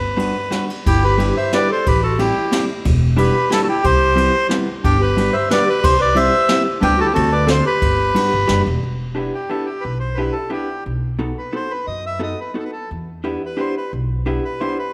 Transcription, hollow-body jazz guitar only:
0.17 G3 B3 D4 F#4
0.51 G3 B3 D4 F#4
1.18 G3 B3 D4 E4 G4
1.53 G3 B3 D4 E4 G4
2.19 G3 A3 C4 E4 G4
2.52 G3 A3 C4 E4 G4
3.17 G3 B3 D4 E4 G4
3.50 G3 B3 D4 E4 G4
4.16 G3 B3 C4 E4 G4
4.49 G3 B3 C4 E4 G4
5.17 G3 B3 D4 F#4 G4
5.50 G3 B3 D4 F#4 G4
6.15 G3 B3 C4 E4 G4
6.49 G3 B3 C4 E4 G4
6.81 G3 B3 D4 G4 B4
7.13 A3 C4 D4 F#4 A4
7.47 A3 C4 D4 F#4 A4
8.15 G3 B3 D4 F#4 G4
8.48 G3 B3 D4 F#4 G4
9.15 B3 D4 E4 G4
9.49 B3 D4 E4 G4
10.18 B3 D4 E4 G4
10.50 B3 D4 E4 G4
11.19 B3 D#4 F#4 A4
11.53 B3 D#4 F#4 A4
12.19 B3 D#4 F#4 A4
12.54 B3 D#4 F#4 A4
13.24 B3 D4 E4 G4
13.57 B3 D4 E4 G4
14.26 B3 D4 E4 G4
14.61 B3 D4 E4 G4

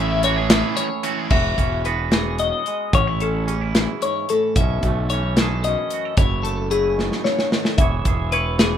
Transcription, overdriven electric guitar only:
Already playing: A3 C#4 E4
0.00 E3
0.25 E3 A3 C#4 E4
0.51 E3 A3 C#4 E4
1.04 E3 A3 C#4 E4

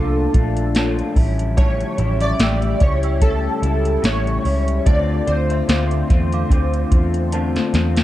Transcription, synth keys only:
Already playing: A4
1.57 C#5
2.21 D5
2.82 C#5
3.22 A4
4.05 C#5
4.86 D5
5.27 C5

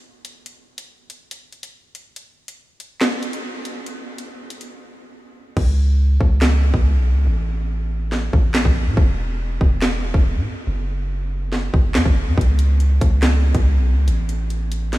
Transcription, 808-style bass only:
5.57 C#2
6.21 C#2
6.74 C#2
6.95 B1
7.11 C#2
7.27 A1
8.33 A1
8.65 A1
8.86 A2
8.97 E1
9.61 E1
10.14 E1
10.35 G#2
10.67 F#1
11.74 F#1
11.95 F#2
12.06 F#1
12.27 F#2
12.38 C#2
13.01 C#2
13.55 C#2
13.76 B1
13.92 C#2
14.08 A1

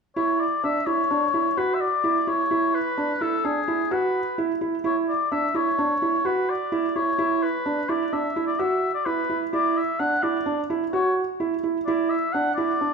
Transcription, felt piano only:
0.16 E4
0.63 D4
0.87 E4
1.11 D4
1.34 E4
1.57 F#4
2.04 E4
2.27 E4
2.51 E4
2.97 D4
3.21 E4
3.45 D4
3.68 E4
3.91 F#4
4.38 E4
4.61 E4
4.84 E4
5.32 D4
5.54 E4
5.78 D4
6.02 E4
6.25 F#4
6.72 E4
6.96 E4
7.19 E4
7.66 D4
7.89 E4
8.13 D4
8.36 E4
8.59 F#4
9.06 E4
9.30 E4
9.53 E4
9.99 D4
10.23 E4
10.46 D4
10.70 E4
10.93 F#4
11.40 E4
11.63 E4
11.88 E4
12.34 D4
12.58 E4
12.81 D4

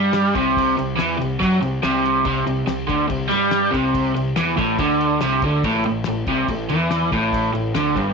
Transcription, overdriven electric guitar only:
Already playing: G3
0.35 C3
0.78 C3
0.96 E3
1.18 C3
1.40 F#3
1.61 C3
1.83 C3
2.26 C3
2.47 C3
2.67 C3
2.88 D3
3.08 C3
3.29 G3
3.71 C3
4.15 C3
4.37 E3
4.57 A2
4.80 D3
5.22 C3
5.45 D3
5.65 A2
5.86 A2
6.08 A2
6.29 C3
6.50 A2
6.70 E3
7.13 A2
7.53 A2
7.75 D3
7.96 G2

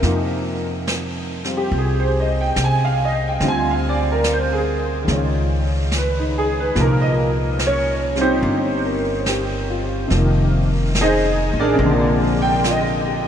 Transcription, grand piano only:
0.01 C3 F3 A#3
0.05 D#4
1.44 G3 C4 F4
1.57 G4
1.78 G#4
2.00 C5
2.20 D#5
2.41 G5
2.64 G#5
2.85 F5
3.05 D#5
3.28 G5
3.41 D3 G3 C4 F4
3.48 G#5
3.70 F5
3.89 D5
4.12 A#4
4.33 C5
4.53 G#4
5.04 D#3 G#3
5.11 C#4 F4
5.98 B4
6.19 D#4
6.38 G#4
6.60 B4
6.75 A#2 F3 A#3
6.80 D#4 A#4
7.02 D#5
7.66 C#4 C#5
8.15 G3 C4 F4
8.21 C4 D#4 G4 C5
8.85 A#4
9.28 G4
9.70 F4
10.07 C3 F3
10.14 D#3 A#3
11.01 D#4 G#4 C5 D#5
11.60 D4 G#4 A#4 D5
11.75 C3 F3
11.81 A#3
11.85 D3
12.42 G5
12.65 F4
12.71 D#5
13.07 G4

